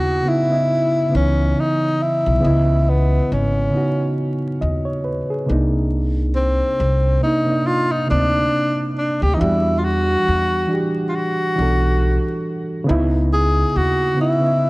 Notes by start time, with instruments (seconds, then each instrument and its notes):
Already playing: upright bass D#2, reed electric piano C#3 B3 D#4 E4, tenor saxophone F#4
0.23 reed electric piano C#3 B3
0.28 reed electric piano D#4 E4, tenor saxophone E4
0.48 reed electric piano C#3 B3
0.52 reed electric piano E4 D#5
1.09 reed electric piano C#3 B3
1.14 upright bass C#2, reed electric piano E3 D#4, tenor saxophone C#4
1.60 tenor saxophone D#4
2.02 tenor saxophone E4
2.26 upright bass B1
2.40 reed electric piano C#3 B3
2.45 upright bass C#2, reed electric piano E4 D#5
2.89 tenor saxophone B3
3.32 upright bass G#1, tenor saxophone C#4
3.71 reed electric piano C#3 B3
3.75 reed electric piano D#4 F#4
4.61 upright bass D#2, reed electric piano D#5
4.85 reed electric piano C#5
5.04 reed electric piano B4
5.30 reed electric piano G#4
5.46 upright bass C2, reed electric piano C3 A#3
5.50 reed electric piano D4 D#4
6.35 tenor saxophone C4
6.80 upright bass C2
7.20 reed electric piano C3 A#3, tenor saxophone D#4
7.25 reed electric piano D4 D#4
7.45 reed electric piano C3 A#3
7.49 reed electric piano D4 D#4
7.67 tenor saxophone F4
7.92 tenor saxophone D#4
8.07 reed electric piano C3 A#3, tenor saxophone D4
8.11 upright bass D2, reed electric piano C4 D4
8.98 tenor saxophone D4
9.22 upright bass D2, tenor saxophone G4
9.34 reed electric piano E3, tenor saxophone D#4
9.39 upright bass E2, reed electric piano D4 F#4, tenor saxophone E4
9.44 reed electric piano G3
9.78 tenor saxophone F4
9.84 tenor saxophone F#4
10.28 upright bass E2
10.67 reed electric piano E3 D4
10.71 reed electric piano F#4 G4
11.09 tenor saxophone F4
11.15 tenor saxophone F#4
11.55 upright bass B1, reed electric piano E3 D4
11.60 reed electric piano F#4 A4
12.84 reed electric piano C#3 B3
12.88 upright bass C#2, reed electric piano D#4 E4
13.33 tenor saxophone G#4
13.76 upright bass D#2, tenor saxophone F#4
14.15 reed electric piano C#3 B3
14.19 reed electric piano D#4 E4, tenor saxophone E4
14.39 reed electric piano C#3 B3
14.44 reed electric piano E4 D#5